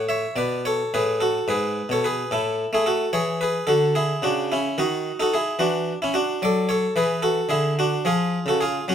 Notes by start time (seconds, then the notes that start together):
Already playing: A2
0.09 C#5 E5
0.36 B2 B4 D5
0.65 A4 C#5
0.94 A2 G#4 B4
1.20 F#4 A4
1.48 G#2 G#4 B4
1.89 B2 A4 C#5
2.04 G#4 B4
2.31 A2 E4 A4
2.73 A3 E4 G#4
2.86 F#4 A4
3.13 E3 G#4 C#5
3.41 G#4 B4
3.67 D3 F#4 A4
3.95 E4 G#4
4.22 C#3 D4 F#4
4.52 C#4 E4
4.78 D#3 D#4 F#4
5.20 D#4 F#4 A4
5.34 E4 G#4
5.59 E3 D4 F#4
6.02 C#4 E4
6.14 D4 F#4
6.42 F#3 A4 D5
6.69 A4 C#5
6.96 E3 G#4 B4
7.22 F#4 A4
7.49 D3 E4 G#4
7.79 D4 F#4
8.05 F3 F4 G#4
8.46 C#3 F#4 A4
8.61 F4 G#4
8.88 F#3 C#4 F#4